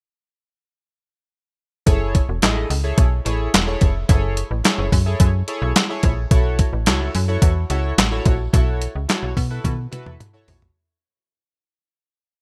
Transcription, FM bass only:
1.87 2.21 F#1 medium
2.29 2.40 E1 medium
2.43 2.65 A1 medium
2.70 2.93 C#2 medium
2.98 3.21 B1 medium
3.26 3.49 A1 medium
3.54 3.77 E1 medium
3.82 4.04 F1 medium
4.09 4.43 F#1 loud
4.51 4.62 A1 medium
4.78 4.90 F#1 medium
4.92 5.15 F#2 loud
5.20 5.43 F#2 loud
5.62 5.73 B1 loud
6.03 6.26 A#1 medium
6.31 6.65 B1 medium
6.73 6.88 A1 medium
6.87 7.09 C#2 medium
7.15 7.38 F#2 loud
7.42 7.65 E2 medium
7.70 7.93 C#2 medium
7.98 8.21 A1 medium
8.26 8.48 A#1 medium
8.53 8.88 B1 loud
8.95 9.07 C#2 medium
9.23 9.34 B1 medium
9.37 9.60 B2 medium
9.64 9.87 B2 loud
10.06 10.18 E2 medium
10.48 10.71 A#1 medium

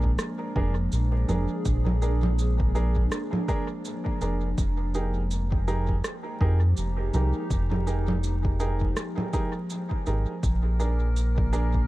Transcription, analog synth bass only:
0.00 0.16 A#1 loud
0.56 0.89 F1 loud
0.93 1.25 A#1 medium
1.29 1.47 F1 medium
1.66 3.09 A#1 medium
4.21 4.54 F1 loud
4.58 6.01 F1 loud
6.41 6.74 F2 loud
6.78 7.10 F1 medium
7.14 7.33 C2 loud
7.51 8.94 F1 loud
10.07 10.26 G#1 medium
10.43 11.87 A#1 medium

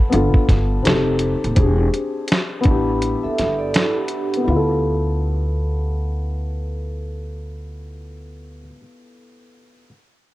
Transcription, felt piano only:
0.00 0.10 B3 medium
0.00 0.15 E4 medium
0.00 0.10 F4 medium
0.00 0.12 A4 medium
0.10 0.83 B3 medium
0.10 0.84 D4 medium
0.10 0.85 F4 medium
0.14 0.86 A4 medium
0.83 1.54 C4 medium
0.83 1.57 D#4 medium
0.83 1.57 G4 medium
0.87 1.58 A4 medium
1.56 2.65 C4 medium
1.56 2.63 D4 medium
1.56 2.66 G4 medium
1.60 2.67 G#4 medium
2.61 4.36 B3 medium
2.61 4.42 D4 medium
2.67 4.42 E4 medium
2.67 4.45 G4 medium
4.37 8.58 B3 medium
4.44 8.65 E4 medium
4.50 8.71 F4 medium
4.56 8.78 A4 medium

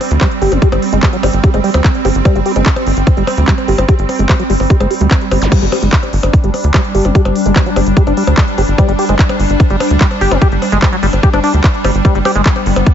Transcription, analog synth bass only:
0.11 0.18 D2 medium
0.42 0.48 G1 medium
0.52 0.59 G1 medium
0.72 0.79 G1 medium
0.93 0.99 G1 medium
1.23 1.30 G1 medium
1.33 1.40 G1 medium
1.54 1.61 G1 medium
1.74 1.81 D2 medium
2.05 2.12 G1 loud
2.15 2.22 G1 medium
2.35 2.42 G1 medium
2.56 2.63 G1 medium
2.87 2.93 G1 medium
2.97 3.03 G1 medium
3.17 3.24 G1 medium
3.38 3.44 D2 medium
3.68 3.75 G1 medium
3.78 3.85 G1 medium
3.99 4.06 G1 medium
4.19 4.26 G1 medium
4.50 4.57 G1 loud
4.60 4.67 G1 medium
4.80 4.87 G1 medium
5.01 5.08 D2 medium
5.31 5.38 G1 medium
5.42 5.48 G1 medium
5.62 5.69 G1 medium
5.82 5.89 G1 medium
6.13 6.20 G1 medium
6.23 6.30 G1 medium
6.44 6.50 G1 medium
6.64 6.71 D2 medium
6.95 7.01 G1 medium
7.05 7.12 G1 medium
7.25 7.32 G1 medium
7.46 7.52 G1 medium
7.76 7.83 G1 medium
7.87 7.93 G1 medium
8.07 8.14 G1 medium
8.27 8.34 D2 medium
8.58 8.65 G1 medium
8.68 8.75 G1 medium
8.89 8.95 G1 medium
9.09 9.16 G1 medium
9.40 9.46 G1 medium
9.50 9.57 G1 medium
9.70 9.77 G1 medium
9.91 9.97 D2 medium
10.21 10.28 G1 medium
10.31 10.38 G1 medium
10.52 10.59 G1 medium
10.72 10.79 G1 medium
11.03 11.10 G1 medium
11.13 11.20 G1 medium
11.33 11.40 G1 medium
11.54 11.61 D2 medium
11.84 11.91 G1 medium
11.95 12.01 G1 medium
12.15 12.22 G1 medium
12.35 12.42 G1 medium
12.66 12.73 G1 loud
12.76 12.83 G1 medium

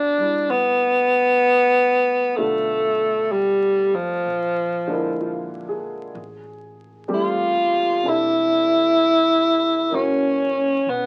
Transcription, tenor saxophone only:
0.00 0.52 D4 medium
0.50 2.37 B3 loud
2.36 3.33 A3 medium
3.32 3.96 G3 medium
3.95 5.83 F3 medium
7.14 8.10 F4 medium
8.08 9.96 E4 loud
9.95 10.91 C#4 medium
10.89 11.06 B3 medium

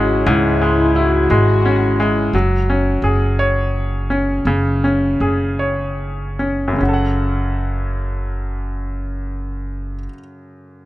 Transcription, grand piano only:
0.00 0.23 C#3 medium
0.00 0.62 G#3 soft
0.00 0.91 C#4 medium
0.00 0.22 E4 medium
0.27 2.29 G#2 medium
0.62 1.29 G#3 soft
0.96 2.30 E4 soft
1.31 1.98 G#3 medium
1.66 2.32 C#4 soft
2.00 2.33 G#3 soft
2.35 4.42 F#3 medium
2.70 4.06 C#4 soft
3.04 4.42 G#4 soft
3.39 4.79 C#5 soft
4.10 4.83 C#4 soft
4.47 6.71 C#3 medium
4.84 6.36 C#4 soft
5.21 6.77 G#4 soft
5.59 6.77 C#5 soft
6.39 6.77 C#4 soft
6.68 9.93 F#2 soft
6.73 9.98 C#3 soft
6.78 10.04 C#4 soft
6.83 10.08 F#4 soft
6.89 10.14 A4 soft
6.94 10.19 F#5 soft

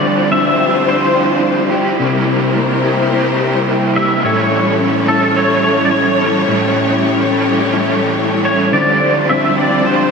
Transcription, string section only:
0.00 1.95 G3 medium
0.00 1.96 D4 medium
0.00 8.68 E4 medium
0.00 1.96 F4 medium
0.00 1.96 C5 loud
1.98 10.11 G3 medium
1.98 4.21 A#4 medium
1.98 4.21 C5 medium
4.22 6.45 A4 medium
4.22 8.67 C#5 medium
6.47 8.69 G4 medium
8.72 10.11 D4 medium
8.72 10.11 E4 medium
8.72 10.11 F4 medium
8.72 10.11 C5 medium

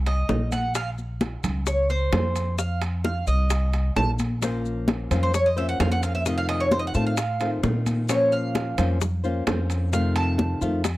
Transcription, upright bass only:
0.00 0.25 C2 medium
0.29 1.38 A#1 medium
1.44 2.09 C#2 loud
2.12 3.21 F2 loud
3.27 3.92 C2 medium
3.96 5.05 A#1 medium
5.11 5.76 F2 medium
5.80 6.88 F2 medium
6.95 7.60 A2 loud
7.63 8.72 A#2 medium
8.78 9.43 F2 medium
9.47 10.56 F2 medium
10.62 10.97 F2 loud

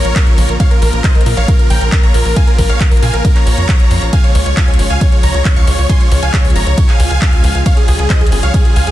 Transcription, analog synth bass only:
0.05 0.14 A#1 medium
0.27 0.36 A#1 medium
0.38 0.47 A#1 medium
0.49 0.58 A#1 medium
0.82 0.91 A#1 loud
0.93 1.02 A#1 medium
1.15 1.24 A#1 medium
1.26 1.35 A#2 loud
1.37 1.46 A#1 medium
1.70 1.79 A#1 medium
1.81 1.90 A#1 medium
2.03 2.12 A#1 medium
2.14 2.23 A#1 medium
2.25 2.34 A#1 medium
2.58 2.67 A#1 loud
2.70 2.78 A#1 medium
2.92 3.00 A#1 medium
3.02 3.11 A#2 loud
3.14 3.22 A#1 medium
3.47 3.55 A#1 medium
3.58 3.67 F2 medium
3.80 3.89 A#1 medium
3.91 4.00 F2 loud
4.02 4.11 A#1 medium
4.35 4.44 C#2 loud
4.46 4.55 C#2 medium
4.68 4.77 C#2 medium
4.79 4.88 G#1 medium
4.90 4.99 C#2 medium
5.23 5.32 C#2 medium
5.34 5.43 C#2 medium
5.56 5.65 C#2 medium
5.67 5.76 C#2 medium
5.78 5.87 C#2 medium
6.11 6.20 C#2 loud
6.22 6.31 C#2 medium
6.45 6.53 C#2 medium
6.56 6.64 G#1 loud
6.67 6.75 C#2 medium
7.00 7.08 C#2 medium
7.11 7.19 C#2 medium
7.33 7.42 C#2 medium
7.44 7.53 C#2 loud
7.55 7.64 C#2 medium
7.88 7.97 C#2 loud
7.99 8.08 C#2 medium
8.21 8.30 C#2 medium
8.32 8.41 G#1 loud
8.43 8.52 C#2 medium
8.76 8.85 C#2 medium
8.87 8.91 C#2 medium

